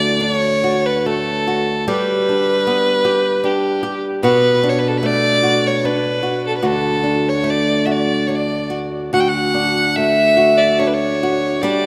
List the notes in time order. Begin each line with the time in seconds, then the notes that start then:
Already playing: D2 A3 F#4 D5
0.20 D4 D5
0.33 C#5
0.64 F#4
0.86 B4
1.01 B4
1.06 A3 A4
1.48 F#4
1.88 G3 G4 B4
2.29 D4
2.67 B3
3.05 G4
3.44 D4 G4
3.83 G4
4.23 B2 F#4 B4
4.63 D4
4.69 C#5
4.79 B4
4.88 A4
4.98 B4
5.03 A3 D5
5.43 F#4
5.67 C#5
5.85 D4 B4
6.23 F#4
6.47 A4
6.58 B4
6.62 D2 F#4 A4
7.04 D4
7.29 C#5
7.44 A3
7.50 D5
7.85 F#4 E5
7.91 D5
8.27 D4 C#5
8.35 D5
8.70 F#4
9.13 D2 F#4 F#5
9.20 G5
9.29 F#5
9.54 D4
9.96 A3 E5
10.37 F#4
10.58 D5
10.79 D4 C#5
10.87 B4
10.94 C#5
11.23 F#4
11.62 G3 D4 D5